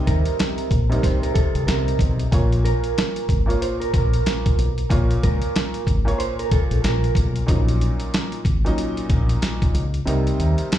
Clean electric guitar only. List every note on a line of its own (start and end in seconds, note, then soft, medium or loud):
0.07 1.00 A#4 medium
1.03 1.21 C5 medium
1.23 1.34 A#4 medium
1.34 1.64 A4 medium
1.67 1.96 A#4 medium
2.65 3.57 A#4 medium
3.62 3.79 C5 medium
3.80 3.92 A#4 medium
3.94 4.87 A#4 medium
5.23 6.16 A#4 medium
6.19 6.36 C5 medium
6.39 6.51 A#4 medium
6.52 6.81 A4 medium
6.85 7.13 A#4 medium